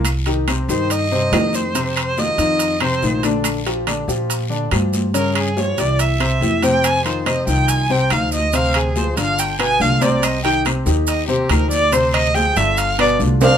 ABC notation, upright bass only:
X:1
M:4/4
L:1/8
Q:1/4=142
K:Cm
V:1 name="Upright bass" clef=bass
C,,3 G,,3 F,,2- | F,,3 F,,3 B,,,2- | B,,,3 B,,3 G,,2- | G,,3 C,,3 F,,2- |
F,,3 C,,3 D,,2- | D,,3 G,,,3 C,,2- | C,,3 E,,3 D,,2- | D,,3 G,,,3 C,,2 |]